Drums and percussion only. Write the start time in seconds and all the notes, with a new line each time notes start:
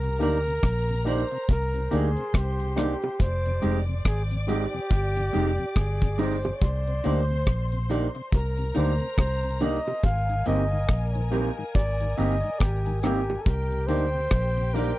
0.04 closed hi-hat
0.20 closed hi-hat
0.46 closed hi-hat
0.63 kick, cross-stick, closed hi-hat
0.89 closed hi-hat
1.07 closed hi-hat, high bongo
1.31 closed hi-hat
1.49 kick, closed hi-hat, high bongo
1.74 closed hi-hat
1.92 closed hi-hat
2.17 closed hi-hat
2.34 kick, cross-stick, closed hi-hat, high bongo
2.60 closed hi-hat
2.77 cross-stick, closed hi-hat, low bongo
3.02 closed hi-hat, high bongo
3.20 kick, closed hi-hat, high bongo
3.46 closed hi-hat
3.63 closed hi-hat
4.05 kick, cross-stick, closed hi-hat
4.31 closed hi-hat
4.49 closed hi-hat, high bongo
4.91 kick, closed hi-hat, high bongo
5.16 closed hi-hat
5.34 closed hi-hat
5.76 kick, cross-stick, closed hi-hat, high bongo
6.01 kick, closed hi-hat
6.19 open hi-hat, low bongo
6.43 closed hi-hat, high bongo
6.61 kick, closed hi-hat, high bongo
6.87 closed hi-hat
7.04 closed hi-hat
7.47 kick, cross-stick, closed hi-hat
7.72 closed hi-hat
7.90 closed hi-hat, high bongo
8.15 closed hi-hat
8.32 kick, closed hi-hat, high bongo
8.57 closed hi-hat
8.75 closed hi-hat
9.18 kick, cross-stick, closed hi-hat, high bongo
9.43 closed hi-hat
9.60 closed hi-hat, low bongo
9.88 high bongo
10.03 kick, closed hi-hat, high bongo
10.29 closed hi-hat
10.46 closed hi-hat
10.89 kick, cross-stick, closed hi-hat
11.15 closed hi-hat
11.33 closed hi-hat, high bongo
11.75 kick, closed hi-hat, high bongo
12.01 closed hi-hat
12.18 closed hi-hat
12.43 closed hi-hat
12.60 kick, cross-stick, closed hi-hat, high bongo
12.86 closed hi-hat
13.03 cross-stick, closed hi-hat, low bongo
13.30 high bongo
13.46 kick, closed hi-hat, high bongo
13.72 closed hi-hat
13.89 closed hi-hat
14.31 kick, cross-stick, closed hi-hat
14.57 closed hi-hat
14.75 closed hi-hat, high bongo